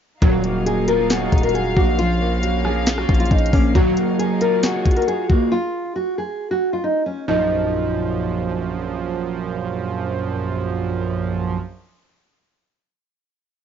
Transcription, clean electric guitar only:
0.22 F#3
0.44 A#3
0.88 F4
1.10 F#4
1.77 A#3
1.99 F3
2.21 A#3
2.65 F4
2.87 F5
3.53 A#3
3.75 F#3
3.97 A#3
4.41 F4
4.63 F#4
5.30 A#3

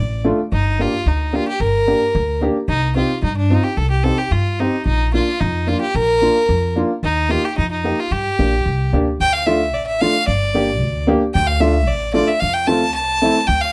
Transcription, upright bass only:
Already playing: A1
0.52 G1
1.06 D2
1.60 G1
2.15 D2
2.68 C2
3.23 G2
3.77 C2
4.31 G2
4.86 A#1
5.41 F2
5.95 A#1
6.49 F2
7.03 D#2
7.58 F2
8.11 G2
8.39 A#1
8.66 C2
8.93 D2
9.20 D2
9.74 A1
10.28 G1
10.81 D2
11.35 D2
11.89 A1
12.42 F2
12.95 C2
13.48 D2

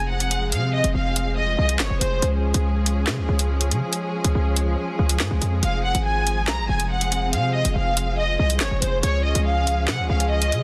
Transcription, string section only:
Already playing: F3 G#3 C4 G#4
2.22 C#4
5.63 C4
9.03 F3 G#3 C#4 G#4

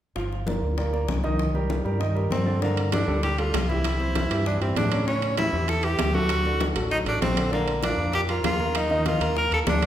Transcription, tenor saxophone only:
2.31 C4
2.63 A#3
2.93 D4
3.24 G4
3.38 F4
3.69 E4
4.47 D4
4.62 C4
4.77 D4
5.07 C#4
5.38 E4
5.69 A4
5.84 G4
6.14 F#4
6.91 D#4
7.08 D4
7.22 C4
7.53 A#3
7.84 D4
8.15 G4
8.29 F4
8.45 F4
8.77 D#4
9.07 F4
9.38 A#4
9.53 A4
9.69 D4

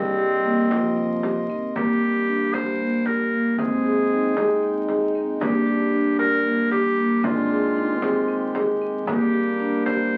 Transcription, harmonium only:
Already playing: A#4 D#5 C6
1.75 G3 D4 A#4
3.59 G#3 D#4 G5
5.40 G3 D4 A#4
7.23 D#3 G#3 G4
9.06 G3 D4 A#4

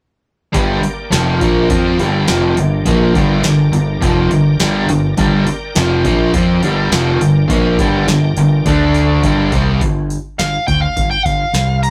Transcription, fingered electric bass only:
0.54 G1
0.83 muted fingered electric bass stroke
1.12 F1
1.41 A#1
1.70 F2
2.00 G1
2.29 F1
2.58 G1
2.86 A#1
3.15 G1
3.45 G1
3.74 G1
4.02 F1
4.32 G1
4.60 G1
4.89 G1
5.18 G1
5.48 muted fingered electric bass stroke
5.77 F1
6.05 A#1
6.34 F2
6.63 G1
6.92 F1
7.21 G1
7.49 A#1
7.79 G1
8.08 G1
8.37 G1
8.66 D2
9.24 G1
9.52 C2
9.81 G1
10.39 G1
10.68 D2
10.97 G1
11.25 G1
11.53 C2

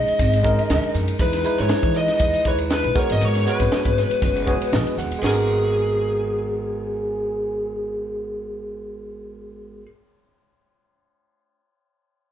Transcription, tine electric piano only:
Already playing: G#3 C#4 D#4 G#4
0.43 G#3 C#4 D#4 A#4
1.19 G#3 D#4 E4 B4
1.44 G#3 D#4 E4 B4
2.46 G#3 D#4 E4 B4
2.95 G#3 B3 F#4 A#4
3.45 G#3 B3 F#4 C#5
4.46 G#3 B3 F#4 G#4 C#5
4.73 D#5
4.98 F#5
5.19 G#3 B3
5.24 F#4 A#4

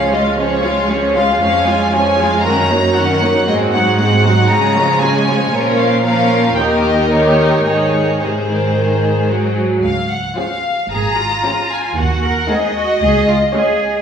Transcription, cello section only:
Already playing: C#2
1.41 F2
2.45 F#2
3.47 G#2
4.50 C#3
5.54 A#2
6.57 D#2
7.65 G#2
10.91 G#4
11.18 F4
11.97 F#4
12.23 A#4
12.49 G#4
12.75 F#4
13.02 G#4
13.28 F4
13.53 G#4

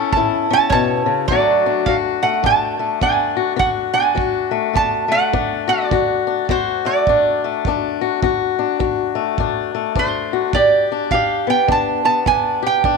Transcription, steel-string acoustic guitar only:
Already playing: E3 C#4 E4 A4
0.17 A2 E4
0.50 C#4
0.72 B2
1.06 C#3
1.30 D3 F#3 A3 D4 F#4
1.66 D4
1.88 F#3 F#4
2.23 A3
2.43 A2 D4
2.79 A3
3.01 F#3 D4
3.37 F#4
3.56 D3 F#4
3.94 D4
4.15 F#3 F#4
4.51 A3
4.73 A2 D4
5.08 A3
5.33 F#3 D4
5.68 F#4
5.91 D3 F#4
6.27 D4
6.49 F#3 F#4
6.85 A3
7.08 A2 D4
7.44 A3
7.67 F#3 D4
8.01 F#4
8.23 D3 F#4
8.59 D4
8.79 F#3 F#4
9.15 A3
9.39 A2 D4
9.75 A3
9.96 F#3 D4
10.33 F#4
10.55 G2 G4
10.92 D4
11.13 G3 G4
11.47 B3
11.68 D3 D4
12.05 B3
12.26 G3 D4
12.63 G4
12.85 G2 D4

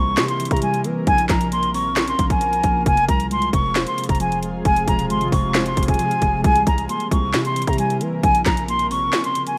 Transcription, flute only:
Already playing: C#6
0.28 C6
0.51 A#5
0.62 G#5
1.07 G#5
1.29 A#5
1.52 C6
1.74 C#6
2.08 C6
2.30 G#5
2.86 G#5
3.08 A#5
3.31 C6
3.53 C#6
3.87 C6
4.09 A#5
4.20 G#5
4.65 G#5
4.87 A#5
5.10 C6
5.32 C#6
5.66 C6
5.88 G#5
6.44 G#5
6.67 A#5
6.89 C6
7.12 C#6
7.45 C6
7.67 A#5
7.79 G#5
8.23 G#5
8.46 A#5
8.68 C6
8.90 C#6
9.24 C6
9.47 G#5

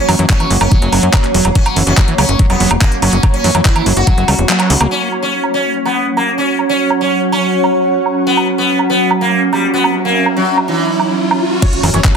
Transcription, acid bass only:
0.09 E3
0.19 E3
0.30 G3
0.40 E3
0.51 F#3
0.72 F#3
0.82 F#3
0.92 F#3
1.34 F#3
1.45 F#3
1.55 F#3
1.76 E3
1.87 E3
1.97 G3
2.08 E3
2.18 F#3
2.39 F#3
2.50 F#3
2.60 F#3
3.02 F#3
3.13 F#3
3.23 F#3
3.44 E3
3.55 E3
3.65 G3
3.76 E3
3.86 F#3
4.07 F#3
4.18 F#3
4.28 G3
4.49 F#3
4.70 F#4
4.81 A#3
11.62 F#3
11.83 E3
11.94 E3
12.04 G3

